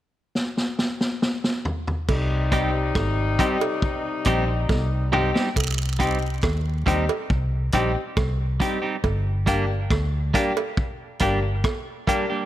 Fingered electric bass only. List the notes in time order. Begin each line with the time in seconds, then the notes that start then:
2.09 C2
2.96 G#1
4.26 A#1
4.70 C2
5.56 C2
6.43 D#2
6.87 D#2
7.30 C2
7.74 A#1
8.17 C2
9.04 G1
9.91 D2
11.21 G1